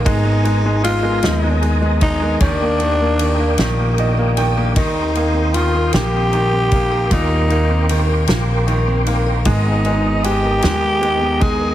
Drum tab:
RD |xxxxxx|xxxxxx|xxxxxx|xxxxxx|
SD |---o--|---o--|---o--|---o--|
BD |o----o|o-----|o----o|o-----|

RD |xxxxxx|
SD |---o--|
BD |o----o|